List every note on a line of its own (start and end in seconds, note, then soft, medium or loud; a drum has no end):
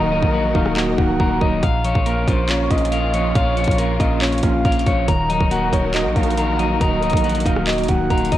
0.00 0.13 D#1 loud
0.00 0.55 D#3 medium
0.00 1.59 D#3 medium
0.00 1.64 D#3 loud
0.00 0.12 F#3 medium
0.00 0.33 A#3 loud
0.00 0.33 A#3 medium
0.00 0.12 D#4 medium
0.00 0.55 D#4 medium
0.00 1.59 D#4 medium
0.00 0.12 F#4 loud
0.00 1.59 F#4 medium
0.00 1.59 A#4 loud
0.00 0.10 D#5 loud
0.00 0.51 D#5 loud
0.00 1.18 A#5 loud
0.12 0.22 C#1 loud
0.12 1.20 F#3 medium
0.12 1.40 D#5 medium
0.22 0.54 A#1 loud
0.22 kick medium
0.33 1.19 A#3 medium
0.33 1.63 F#4 medium
0.55 0.96 D#1 loud
0.55 1.63 D#4 medium
0.55 0.97 D#4 medium
0.55 0.75 F5 medium
0.55 kick medium
0.66 cross-stick medium
0.76 1.63 A#3 medium
0.76 1.63 F#4 loud
0.76 0.97 D#5 medium
0.76 clap loud
0.98 1.19 C#1 loud
0.98 1.63 D#3 medium
0.98 1.63 D#4 medium
0.98 1.39 F#5 medium
0.98 kick loud
1.20 1.40 D#1 loud
1.20 1.63 A#3 medium
1.20 1.62 A#5 loud
1.20 kick medium
1.41 1.62 D#1 loud
1.41 1.63 F#3 medium
1.41 1.62 D#5 medium
1.41 1.63 D#5 medium
1.41 kick loud
1.63 1.94 A#1 loud
1.63 2.71 A#2 loud
1.63 5.05 A#3 medium
1.63 5.05 C#4 medium
1.63 5.05 F4 loud
1.63 2.91 F5 loud
1.63 kick loud
1.63 closed hi-hat medium
1.84 2.92 F3 medium
1.84 3.13 C#5 medium
1.84 closed hi-hat medium
1.95 2.26 A#1 loud
1.95 kick loud
2.06 2.91 A#3 loud
2.06 3.35 A#4 medium
2.06 2.27 F5 medium
2.06 closed hi-hat medium
2.27 2.69 A#1 loud
2.27 2.70 C#4 medium
2.27 3.57 F4 medium
2.27 2.48 C5 medium
2.27 kick medium
2.27 closed hi-hat medium
2.49 3.79 C#4 medium
2.49 3.57 F4 loud
2.49 2.70 C#5 medium
2.49 clap loud
2.49 closed hi-hat medium
2.71 3.33 A#1 loud
2.71 4.00 A#3 medium
2.71 3.79 C#4 medium
2.71 3.32 D#5 loud
2.71 kick loud
2.71 closed hi-hat medium
2.78 closed hi-hat medium
2.85 closed hi-hat medium
2.92 3.77 A#3 medium
2.92 3.34 F5 loud
2.92 closed hi-hat medium
3.14 3.56 F3 medium
3.14 3.56 C#5 loud
3.14 closed hi-hat medium
3.35 3.67 A#1 loud
3.35 4.43 A#2 medium
3.35 3.96 C#5 loud
3.35 4.64 F5 loud
3.35 kick loud
3.35 closed hi-hat medium
3.57 4.65 F3 medium
3.57 4.85 C#5 medium
3.57 closed hi-hat soft
3.64 3.99 A#1 loud
3.64 kick loud
3.64 closed hi-hat medium
3.71 closed hi-hat medium
3.79 4.64 A#3 medium
3.79 5.08 A#4 medium
3.79 closed hi-hat medium
4.00 4.42 A#1 loud
4.00 4.42 C#4 medium
4.00 5.08 F4 medium
4.00 4.21 D#5 medium
4.00 kick medium
4.00 closed hi-hat medium
4.22 5.08 C#4 medium
4.22 5.08 F4 loud
4.22 4.42 C#5 medium
4.22 clap loud
4.22 closed hi-hat soft
4.27 closed hi-hat medium
4.33 closed hi-hat medium
4.38 closed hi-hat medium
4.43 4.64 A#1 loud
4.43 5.08 A#3 medium
4.43 5.08 C#4 medium
4.43 4.84 F5 medium
4.43 kick loud
4.43 closed hi-hat medium
4.65 4.86 A#1 loud
4.65 5.08 A#3 medium
4.65 5.08 F5 loud
4.65 kick loud
4.65 closed hi-hat soft
4.72 closed hi-hat medium
4.79 closed hi-hat medium
4.86 5.07 A#1 loud
4.86 5.08 F3 medium
4.86 5.08 C#5 loud
4.86 5.07 C#5 medium
4.86 kick loud
4.86 closed hi-hat medium
5.08 5.39 D#1 loud
5.08 6.16 D#3 loud
5.08 8.38 D#3 medium
5.08 8.38 D#4 medium
5.08 8.38 F#4 medium
5.08 8.38 A#4 loud
5.08 6.37 A#5 loud
5.08 kick loud
5.08 closed hi-hat medium
5.30 6.38 F#3 medium
5.30 6.58 D#5 medium
5.30 closed hi-hat medium
5.40 5.72 D#1 loud
5.40 kick loud
5.51 6.36 A#3 medium
5.51 6.81 F#4 medium
5.51 5.72 F#5 medium
5.51 closed hi-hat medium
5.73 6.07 D#1 loud
5.73 7.02 D#4 medium
5.73 6.15 D#4 medium
5.73 5.93 C#5 medium
5.73 kick medium
5.73 closed hi-hat medium
5.94 7.24 A#3 loud
5.94 7.02 F#4 loud
5.94 6.15 D#5 medium
5.94 clap loud
5.94 closed hi-hat medium
6.05 6.16 A#1 loud
6.16 6.78 A#1 loud
6.16 7.46 D#3 medium
6.16 7.24 D#4 medium
6.16 6.77 F5 medium
6.16 kick loud
6.16 closed hi-hat medium
6.23 closed hi-hat medium
6.30 closed hi-hat medium
6.37 7.23 A#3 medium
6.37 6.80 A#5 loud
6.37 closed hi-hat medium
6.59 7.01 F#3 medium
6.59 7.01 D#5 medium
6.59 closed hi-hat medium
6.81 7.04 D#1 loud
6.81 7.89 D#3 loud
6.81 7.42 D#5 loud
6.81 8.09 A#5 loud
6.81 kick loud
6.81 closed hi-hat medium
7.02 7.13 C#1 loud
7.02 8.10 F#3 medium
7.02 8.31 D#5 medium
7.02 closed hi-hat soft
7.10 7.44 A#1 loud
7.10 kick loud
7.10 closed hi-hat medium
7.17 closed hi-hat medium
7.24 8.09 A#3 medium
7.24 8.38 F#4 medium
7.24 closed hi-hat soft
7.29 closed hi-hat medium
7.35 closed hi-hat medium
7.40 closed hi-hat medium
7.45 7.87 D#1 loud
7.45 7.88 D#4 medium
7.45 8.38 D#4 medium
7.45 7.66 F5 medium
7.45 kick medium
7.45 closed hi-hat medium
7.56 cross-stick medium
7.67 8.38 A#3 medium
7.67 8.38 F#4 loud
7.67 7.88 D#5 medium
7.67 clap loud
7.67 closed hi-hat medium
7.73 closed hi-hat medium
7.78 closed hi-hat medium
7.83 closed hi-hat medium
7.88 8.09 C#1 loud
7.88 8.38 D#3 medium
7.88 8.38 D#4 medium
7.88 8.29 F#5 medium
7.88 kick loud
7.88 closed hi-hat medium
8.10 8.31 D#1 loud
8.10 8.38 A#3 medium
8.10 8.38 A#5 loud
8.10 kick medium
8.10 closed hi-hat soft
8.18 closed hi-hat medium
8.25 closed hi-hat medium
8.32 8.38 D#1 loud
8.32 8.38 F#3 medium
8.32 8.38 D#5 medium
8.32 kick loud
8.32 closed hi-hat medium